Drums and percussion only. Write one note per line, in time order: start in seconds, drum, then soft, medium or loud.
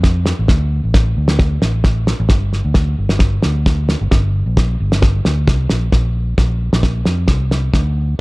0.03 kick medium
0.03 snare medium
0.26 snare medium
0.48 kick medium
0.48 snare medium
0.94 kick medium
0.94 snare medium
1.28 snare medium
1.39 kick medium
1.39 snare medium
1.62 snare medium
1.84 kick medium
1.84 snare medium
2.07 snare medium
2.29 kick medium
2.29 snare medium
2.53 snare soft
2.74 kick medium
2.74 snare medium
3.09 snare medium
3.19 kick medium
3.19 snare medium
3.42 snare medium
3.66 kick medium
3.66 snare medium
3.89 snare medium
4.11 kick medium
4.11 snare medium
4.57 kick medium
4.57 snare medium
4.92 snare medium
5.02 kick medium
5.02 snare medium
5.25 snare medium
5.48 kick medium
5.48 snare medium
5.70 snare medium
5.92 kick medium
5.92 snare medium
6.38 kick medium
6.38 snare medium
6.73 snare medium
6.83 kick medium
6.83 snare medium
7.05 snare medium
7.28 kick medium
7.28 snare medium
7.51 snare medium
7.74 kick medium
7.74 snare medium